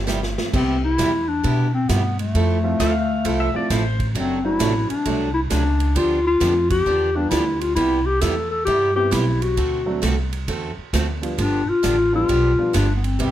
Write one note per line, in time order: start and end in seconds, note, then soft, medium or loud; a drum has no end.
0.00 0.35 G1 medium
0.07 0.19 C3 medium
0.07 0.19 G3 medium
0.07 0.19 B3 medium
0.07 0.20 E4 medium
0.07 0.20 G4 medium
0.07 snare medium
0.07 hi-hat pedal medium
0.23 snare medium
0.38 snare loud
0.53 0.97 C2 medium
0.53 0.76 C3 medium
0.53 1.22 G3 medium
0.53 0.76 G3 medium
0.53 1.22 B3 soft
0.53 0.76 B3 medium
0.53 1.23 C4 soft
0.53 0.81 C4 medium
0.53 0.76 E4 medium
0.53 1.23 E4 medium
0.53 1.23 G4 medium
0.53 0.76 G4 medium
0.53 kick medium
0.53 crash medium
0.84 1.30 E4 loud
0.98 1.43 E2 medium
0.98 1.10 C3 medium
0.98 1.10 G3 medium
0.98 1.10 B3 medium
0.98 1.11 E4 medium
0.98 1.11 G4 medium
0.98 kick soft
0.98 snare medium
0.98 hi-hat pedal medium
0.98 ride medium
1.28 1.73 D4 loud
1.44 1.88 B2 medium
1.44 1.66 C3 medium
1.44 1.66 G3 medium
1.44 1.66 B3 medium
1.44 1.66 E4 medium
1.44 1.67 G4 medium
1.44 kick soft
1.44 ride medium
1.74 1.90 C4 loud
1.89 2.33 G2 medium
1.89 2.01 C3 medium
1.89 2.01 G3 medium
1.89 2.18 B3 medium
1.89 2.01 B3 medium
1.89 2.01 E4 medium
1.89 2.01 G4 medium
1.89 kick soft
1.89 snare medium
1.89 hi-hat pedal medium
1.89 ride medium
2.19 3.96 A3 medium
2.19 ride soft
2.34 2.78 F2 medium
2.34 2.57 F3 medium
2.34 2.57 A3 medium
2.34 2.57 C4 medium
2.34 2.57 E4 medium
2.34 2.57 A4 medium
2.34 kick soft
2.34 ride medium
2.64 2.78 F3 medium
2.64 2.78 A3 medium
2.64 2.78 C4 medium
2.64 2.78 E4 medium
2.64 2.78 F4 medium
2.80 3.23 D2 medium
2.80 2.91 F3 medium
2.80 2.91 A3 medium
2.80 2.92 C4 medium
2.80 2.92 E4 medium
2.80 2.92 A4 medium
2.80 3.38 F5 medium
2.80 kick soft
2.80 snare medium
2.80 hi-hat pedal medium
2.80 ride medium
3.25 3.52 C2 medium
3.25 3.47 F3 medium
3.25 3.47 A3 medium
3.25 3.47 C4 medium
3.25 3.47 E4 medium
3.25 3.48 A4 medium
3.25 kick soft
3.25 ride medium
3.40 3.54 E5 medium
3.54 3.68 F3 medium
3.54 3.68 A3 medium
3.54 3.68 C4 medium
3.54 3.68 E4 medium
3.54 3.69 F4 medium
3.54 3.70 D5 medium
3.70 4.14 A1 loud
3.70 3.82 F3 medium
3.70 3.82 A3 medium
3.70 3.82 C4 medium
3.70 3.82 E4 medium
3.70 3.82 A4 medium
3.70 4.06 C5 medium
3.70 kick soft
3.70 snare medium
3.70 hi-hat pedal medium
3.70 ride medium
4.00 kick soft
4.00 ride soft
4.15 4.59 F#1 medium
4.15 4.37 C3 medium
4.15 4.37 F#3 medium
4.15 4.37 A3 medium
4.15 4.43 C4 medium
4.15 4.38 D4 medium
4.15 4.38 F#4 medium
4.15 kick soft
4.15 ride medium
4.44 5.02 F#3 medium
4.44 5.02 A3 medium
4.44 5.02 C4 medium
4.44 5.02 D4 medium
4.44 4.87 E4 loud
4.44 5.03 F#4 medium
4.59 4.88 A1 loud
4.59 4.71 C3 medium
4.59 4.72 F#3 medium
4.59 4.72 A3 medium
4.59 4.72 D4 medium
4.59 4.72 F#4 medium
4.59 kick soft
4.59 snare medium
4.59 hi-hat pedal medium
4.59 ride medium
4.89 5.32 D4 medium
4.89 muted upright bass stroke soft
4.89 ride medium
5.05 5.49 C2 medium
5.05 5.28 C3 medium
5.05 5.28 F#3 medium
5.05 5.28 A3 medium
5.05 5.28 D4 medium
5.05 5.28 F#4 medium
5.05 kick soft
5.05 ride medium
5.34 5.41 E4 medium
5.50 5.94 C#2 loud
5.50 5.62 C3 medium
5.50 5.62 F#3 medium
5.50 5.63 A3 medium
5.50 5.98 D4 medium
5.50 5.63 D4 medium
5.50 5.63 F#4 medium
5.50 kick soft
5.50 snare medium
5.50 hi-hat pedal medium
5.50 ride medium
5.80 ride medium
5.95 6.40 D2 medium
5.95 6.18 D3 medium
5.95 6.18 F3 medium
5.95 6.18 B3 medium
5.95 6.18 D4 medium
5.95 6.26 F4 loud
5.95 6.18 G4 medium
5.95 kick soft
5.95 ride medium
6.27 6.68 F4 loud
6.40 6.85 F2 medium
6.40 6.52 D3 medium
6.40 6.53 F3 medium
6.40 6.53 B3 medium
6.40 6.53 D4 medium
6.40 6.53 G4 medium
6.40 kick soft
6.40 snare medium
6.40 hi-hat pedal medium
6.40 ride medium
6.70 7.17 G4 loud
6.70 kick medium
6.70 ride medium
6.86 7.30 E2 medium
6.86 7.08 D3 medium
6.86 7.08 F3 medium
6.86 7.09 B3 medium
6.86 7.09 D4 medium
6.86 7.09 G4 medium
6.86 kick soft
7.15 7.73 G3 medium
7.15 7.73 B3 medium
7.15 7.29 D4 medium
7.15 7.74 D4 medium
7.15 7.74 F4 medium
7.15 7.74 G4 medium
7.30 7.75 D2 medium
7.30 7.43 D3 medium
7.30 7.43 F3 medium
7.30 7.43 B3 medium
7.30 7.43 D4 medium
7.30 7.62 E4 medium
7.30 7.43 G4 medium
7.30 kick soft
7.30 snare medium
7.30 hi-hat pedal medium
7.30 ride medium
7.61 7.75 F4 medium
7.61 ride medium
7.75 8.20 C2 medium
7.75 7.99 C3 medium
7.75 7.99 G3 medium
7.75 7.99 B3 medium
7.75 8.07 E4 loud
7.75 7.99 E4 medium
7.75 7.99 G4 medium
7.75 kick soft
7.75 ride medium
8.06 8.22 G4 loud
8.21 8.66 E2 medium
8.21 8.34 C3 medium
8.21 8.34 G3 medium
8.21 8.34 B3 medium
8.21 8.34 E4 medium
8.21 8.34 G4 loud
8.21 8.50 A4 medium
8.21 kick soft
8.21 snare medium
8.21 hi-hat pedal medium
8.21 ride medium
8.51 8.64 A4 loud
8.65 9.11 G2 medium
8.65 8.89 C3 medium
8.65 8.89 G3 medium
8.65 8.89 B3 medium
8.65 8.90 E4 medium
8.65 8.93 G4 loud
8.65 8.90 G4 medium
8.65 kick soft
8.65 ride medium
8.96 9.54 G3 medium
8.96 9.54 B3 medium
8.96 9.54 C4 medium
8.96 9.55 E4 medium
8.96 9.14 G4 loud
8.96 9.55 G4 medium
9.11 9.56 B1 loud
9.11 9.24 C3 medium
9.11 9.24 G3 medium
9.11 9.24 B3 medium
9.11 9.24 E4 medium
9.11 9.44 E4 medium
9.11 9.24 G4 medium
9.11 kick soft
9.11 snare medium
9.11 hi-hat pedal medium
9.11 ride medium
9.42 9.87 F#4 medium
9.42 ride medium
9.57 10.01 D2 medium
9.57 9.80 D3 medium
9.57 9.80 A3 medium
9.57 9.80 C4 medium
9.57 9.80 F#4 medium
9.57 9.80 A4 medium
9.57 kick soft
9.57 ride medium
9.86 10.00 F#3 medium
9.86 10.01 A3 medium
9.86 10.01 C4 medium
9.86 10.01 D4 medium
9.86 10.01 F#4 medium
10.02 10.47 C2 medium
10.02 10.14 D3 medium
10.02 10.14 A3 medium
10.02 10.15 C4 medium
10.02 10.15 F#4 medium
10.02 10.15 A4 medium
10.02 kick soft
10.02 snare medium
10.02 hi-hat pedal medium
10.02 ride medium
10.33 ride medium
10.48 10.76 E2 medium
10.48 10.70 D3 medium
10.48 10.70 A3 medium
10.48 10.71 C4 medium
10.48 10.71 F#4 medium
10.48 10.71 A4 medium
10.48 kick soft
10.48 ride medium
10.77 muted upright bass stroke soft
10.93 11.37 D2 loud
10.93 11.05 D3 medium
10.93 11.05 A3 medium
10.93 11.06 C4 medium
10.93 11.06 F#4 medium
10.93 11.06 A4 medium
10.93 kick soft
10.93 snare medium
10.93 hi-hat pedal medium
10.93 ride medium
11.22 11.36 F3 medium
11.22 11.37 G3 medium
11.22 11.37 B3 medium
11.22 11.37 D4 medium
11.22 11.37 F4 medium
11.22 ride medium
11.38 11.66 G1 medium
11.38 11.61 D3 medium
11.38 11.61 F3 medium
11.38 11.61 B3 medium
11.38 11.61 D4 medium
11.38 11.70 D4 loud
11.38 11.61 G4 medium
11.38 kick soft
11.38 ride medium
11.68 12.14 F4 loud
11.68 muted upright bass stroke soft
11.83 12.28 A1 medium
11.83 11.95 D3 medium
11.83 11.95 F3 medium
11.83 11.96 B3 medium
11.83 11.96 D4 medium
11.83 11.96 G4 medium
11.83 kick soft
11.83 snare medium
11.83 hi-hat pedal medium
11.83 ride medium
12.13 12.27 F3 medium
12.13 12.27 G3 medium
12.13 12.27 B3 medium
12.13 12.28 D4 medium
12.13 12.28 F4 medium
12.13 12.76 F4 loud
12.28 12.57 B1 medium
12.28 12.51 D3 medium
12.28 12.51 F3 medium
12.28 12.51 B3 medium
12.28 12.52 D4 medium
12.28 12.52 G4 medium
12.28 kick soft
12.28 ride medium
12.58 12.73 F3 medium
12.58 12.73 G3 medium
12.58 12.73 B3 medium
12.58 12.73 D4 medium
12.58 12.73 F4 medium
12.73 13.18 G1 loud
12.73 12.86 D3 medium
12.73 12.86 F3 medium
12.73 12.86 B3 medium
12.73 12.86 D4 medium
12.73 12.94 D4 medium
12.73 12.86 G4 medium
12.73 kick soft
12.73 snare medium
12.73 hi-hat pedal medium
12.73 ride medium
12.95 13.06 B3 medium
13.04 13.31 C4 medium
13.04 ride soft
13.19 13.31 C2 medium
13.19 13.31 C3 medium
13.19 13.31 E3 medium
13.19 13.31 G3 medium
13.19 13.31 B3 medium
13.19 13.31 C4 medium
13.19 13.31 E4 medium
13.19 13.31 G4 medium
13.19 13.31 B4 medium
13.19 kick soft
13.19 ride medium